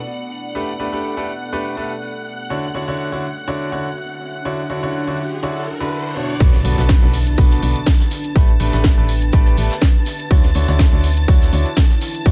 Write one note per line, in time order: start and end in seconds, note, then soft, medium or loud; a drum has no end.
0.00 2.86 B3 medium
0.00 3.92 A4 medium
0.00 2.26 D5 medium
0.00 6.42 F#5 medium
0.00 6.42 F#6 medium
0.55 0.69 A3 medium
0.55 0.69 D4 medium
0.55 0.69 G4 medium
0.55 2.26 G4 medium
0.55 0.69 A4 medium
0.55 0.69 B4 medium
0.79 0.90 A3 medium
0.79 0.90 D4 medium
0.79 0.90 G4 medium
0.79 0.90 A4 medium
0.79 0.90 B4 medium
0.93 1.14 A3 medium
0.93 1.14 D4 medium
0.93 1.14 G4 medium
0.93 1.14 A4 medium
0.93 1.14 B4 loud
1.17 1.30 A3 medium
1.17 1.30 D4 medium
1.17 1.30 G4 medium
1.17 1.30 A4 medium
1.17 1.30 B4 loud
1.53 1.74 A3 loud
1.53 1.74 D4 medium
1.53 1.74 G4 medium
1.53 1.74 A4 medium
1.53 1.74 B4 loud
1.77 1.91 A3 medium
1.77 1.91 D4 medium
1.77 1.91 G4 medium
1.77 1.91 A4 medium
1.77 1.91 B4 medium
2.26 11.73 D4 medium
2.50 2.65 D3 medium
2.50 2.65 D4 medium
2.50 2.65 E4 medium
2.50 2.65 F#4 medium
2.50 2.65 C#5 medium
2.50 riser medium
2.61 7.09 F#4 medium
2.61 7.09 C#5 medium
2.75 2.85 D3 medium
2.75 2.85 D4 medium
2.75 2.85 E4 medium
2.75 2.85 F#4 medium
2.75 2.85 C#5 medium
2.83 7.09 E5 medium
2.88 3.09 D3 medium
2.88 3.09 D4 medium
2.88 3.09 E4 medium
2.88 3.09 F#4 medium
2.88 3.09 C#5 loud
3.12 3.25 D3 medium
3.12 3.25 D4 medium
3.12 3.25 E4 medium
3.12 3.25 F#4 medium
3.12 3.25 C#5 medium
3.48 3.69 D3 loud
3.48 3.69 D4 medium
3.48 3.69 E4 medium
3.48 3.69 F#4 medium
3.48 3.69 C#5 loud
3.72 3.87 D3 medium
3.72 3.87 D4 medium
3.72 3.87 E4 medium
3.72 3.87 F#4 medium
3.72 3.87 C#5 medium
4.45 4.60 D3 medium
4.45 4.60 D4 medium
4.45 4.60 E4 medium
4.45 4.60 F#4 medium
4.45 4.60 C#5 loud
4.70 4.80 D3 medium
4.70 4.80 D4 medium
4.70 4.80 E4 medium
4.70 4.80 F#4 medium
4.70 4.80 C#5 medium
4.83 5.04 D3 medium
4.83 5.04 D4 medium
4.83 5.04 E4 medium
4.83 5.04 F#4 medium
4.83 5.04 C#5 loud
5.07 5.20 D3 medium
5.07 5.20 D4 medium
5.07 5.20 E4 medium
5.07 5.20 F#4 medium
5.07 5.20 C#5 medium
5.43 5.65 D3 loud
5.43 5.65 D4 medium
5.43 5.65 E4 medium
5.43 5.65 F#4 medium
5.43 5.65 C#5 loud
5.80 6.13 D3 loud
5.80 6.13 D4 medium
5.80 6.13 E4 medium
5.80 6.13 F#4 medium
5.80 6.13 B4 loud
6.16 6.30 B2 medium
6.16 6.30 D4 medium
6.16 6.30 E4 medium
6.16 6.30 F#4 medium
6.16 6.30 C#5 medium
6.40 6.63 B1 medium
6.40 6.55 B2 medium
6.40 6.55 D4 medium
6.40 6.55 F#4 medium
6.40 6.55 A4 medium
6.40 6.55 B4 loud
6.40 12.32 A5 medium
6.40 12.32 A6 medium
6.40 kick loud
6.40 closed hi-hat medium
6.40 crash loud
6.40 tambourine medium
6.40 impact medium
6.40 shaker soft
6.51 11.40 B4 medium
6.51 snare soft
6.51 closed hi-hat soft
6.65 6.75 B1 loud
6.65 6.75 B2 medium
6.65 6.75 D4 medium
6.65 6.75 F#4 medium
6.65 6.75 A4 medium
6.65 6.75 B4 medium
6.65 8.90 A5 medium
6.65 open hi-hat loud
6.65 tambourine medium
6.65 shaker medium
6.78 7.00 B1 medium
6.78 6.99 B2 medium
6.78 6.99 D4 medium
6.78 6.99 F#4 medium
6.78 6.99 A4 medium
6.78 6.99 B4 loud
6.78 snare soft
6.78 closed hi-hat medium
6.78 shaker soft
6.89 kick loud
6.89 snare loud
6.89 closed hi-hat medium
6.89 open hi-hat medium
6.89 shaker soft
7.02 7.36 B1 loud
7.02 7.15 B2 medium
7.02 7.15 D4 medium
7.02 7.15 F#4 medium
7.02 7.15 A4 medium
7.02 7.15 B4 loud
7.02 closed hi-hat soft
7.14 open hi-hat loud
7.14 tambourine medium
7.14 shaker medium
7.27 closed hi-hat medium
7.27 shaker soft
7.38 7.60 B1 loud
7.38 7.60 B2 loud
7.38 7.60 D4 medium
7.38 7.60 F#4 loud
7.38 7.60 A4 loud
7.38 7.60 B4 loud
7.38 kick loud
7.38 closed hi-hat medium
7.38 tambourine medium
7.38 shaker soft
7.51 snare soft
7.51 closed hi-hat soft
7.62 7.74 B1 loud
7.62 7.77 B2 medium
7.62 7.77 D4 medium
7.62 7.77 F#4 medium
7.62 7.77 A4 medium
7.62 7.77 B4 loud
7.62 open hi-hat loud
7.62 tambourine medium
7.62 shaker medium
7.76 closed hi-hat medium
7.76 shaker soft
7.86 kick loud
7.86 snare loud
7.86 closed hi-hat medium
7.86 tambourine medium
7.86 shaker soft
8.00 snare soft
8.00 closed hi-hat soft
8.11 snare soft
8.11 open hi-hat loud
8.11 tambourine medium
8.11 shaker medium
8.24 closed hi-hat medium
8.24 shaker soft
8.35 8.58 A1 medium
8.35 8.50 A3 medium
8.35 8.50 D4 medium
8.35 8.50 G4 medium
8.35 8.50 A4 medium
8.35 8.50 B4 loud
8.35 kick loud
8.35 closed hi-hat medium
8.35 tambourine medium
8.35 shaker soft
8.49 closed hi-hat soft
8.53 10.06 G5 medium
8.60 8.71 A1 medium
8.60 8.70 A3 medium
8.60 8.70 D4 medium
8.60 8.70 G4 medium
8.60 8.70 A4 medium
8.60 8.70 B4 loud
8.60 open hi-hat loud
8.60 tambourine medium
8.60 shaker medium
8.73 8.95 A1 medium
8.73 8.94 A3 loud
8.73 8.94 D4 medium
8.73 8.94 G4 medium
8.73 8.94 A4 medium
8.73 8.94 B4 loud
8.73 snare soft
8.73 closed hi-hat medium
8.73 shaker soft
8.84 kick loud
8.84 snare loud
8.84 closed hi-hat medium
8.84 tambourine medium
8.84 shaker soft
8.97 9.31 A1 loud
8.97 9.10 A3 medium
8.97 9.10 D4 medium
8.97 9.10 G4 medium
8.97 9.10 A4 medium
8.97 9.10 B4 loud
8.97 closed hi-hat soft
9.09 open hi-hat loud
9.09 tambourine medium
9.09 shaker medium
9.22 closed hi-hat medium
9.22 shaker soft
9.32 9.55 A1 loud
9.32 9.55 A3 loud
9.32 9.55 D4 loud
9.32 9.55 G4 loud
9.32 9.55 A4 loud
9.32 9.55 B4 loud
9.32 kick loud
9.32 closed hi-hat medium
9.32 tambourine medium
9.32 shaker soft
9.46 closed hi-hat soft
9.57 9.69 A1 loud
9.57 9.72 A3 medium
9.57 9.72 D4 medium
9.57 9.72 G4 medium
9.57 9.72 A4 medium
9.57 9.72 B4 loud
9.57 open hi-hat loud
9.57 tambourine medium
9.57 shaker medium
9.71 snare medium
9.71 closed hi-hat medium
9.71 shaker soft
9.82 kick loud
9.82 snare loud
9.82 closed hi-hat medium
9.82 tambourine medium
9.82 shaker soft
9.95 closed hi-hat soft
10.06 12.32 E4 medium
10.06 snare soft
10.06 open hi-hat loud
10.06 tambourine medium
10.06 shaker medium
10.20 closed hi-hat soft
10.20 shaker soft
10.25 12.32 C#5 medium
10.31 10.53 D2 medium
10.31 10.45 D3 medium
10.31 10.45 D4 medium
10.31 10.45 E4 medium
10.31 10.45 F#4 medium
10.31 10.45 C#5 loud
10.31 kick loud
10.31 closed hi-hat medium
10.31 tambourine medium
10.31 shaker soft
10.44 snare soft
10.44 closed hi-hat soft
10.55 10.66 D2 medium
10.55 10.65 D3 medium
10.55 10.65 D4 medium
10.55 10.65 E4 medium
10.55 10.65 F#4 medium
10.55 10.65 C#5 medium
10.55 open hi-hat loud
10.55 tambourine medium
10.55 shaker medium
10.68 10.90 D2 medium
10.68 10.90 D3 medium
10.68 10.90 D4 medium
10.68 10.90 E4 medium
10.68 10.90 F#4 medium
10.68 10.90 C#5 loud
10.68 snare soft
10.68 closed hi-hat medium
10.68 shaker soft
10.79 kick loud
10.79 snare loud
10.79 closed hi-hat medium
10.79 open hi-hat medium
10.79 shaker soft
10.93 11.26 D2 loud
10.93 11.05 D3 medium
10.93 11.05 D4 medium
10.93 11.05 E4 medium
10.93 11.05 F#4 medium
10.93 11.05 C#5 loud
10.93 closed hi-hat soft
11.03 open hi-hat loud
11.03 tambourine medium
11.03 shaker medium
11.16 12.32 F#5 medium
11.16 closed hi-hat medium
11.16 shaker soft
11.28 11.50 D2 loud
11.28 11.50 D3 loud
11.28 11.50 D4 loud
11.28 11.50 E4 loud
11.28 11.50 F#4 medium
11.28 11.50 C#5 loud
11.28 kick loud
11.28 closed hi-hat soft
11.28 tambourine medium
11.28 shaker soft
11.41 snare soft
11.41 closed hi-hat soft
11.53 11.65 D2 loud
11.53 11.67 D3 medium
11.53 11.67 D4 medium
11.53 11.67 E4 medium
11.53 11.67 F#4 medium
11.53 11.67 C#5 loud
11.53 open hi-hat loud
11.53 tambourine medium
11.53 shaker medium
11.66 closed hi-hat soft
11.66 shaker soft
11.76 kick loud
11.76 snare loud
11.76 closed hi-hat medium
11.76 tambourine medium
11.76 shaker soft
11.90 snare soft
11.90 closed hi-hat soft
12.01 snare soft
12.01 open hi-hat loud
12.01 tambourine medium
12.01 shaker medium
12.15 closed hi-hat medium
12.15 shaker soft
12.25 12.32 D2 loud
12.25 12.32 D3 medium
12.25 12.32 D4 medium
12.25 12.32 E4 medium
12.25 12.32 F#4 medium
12.25 12.32 C#5 loud
12.25 kick loud
12.25 closed hi-hat medium
12.25 tambourine medium
12.25 shaker soft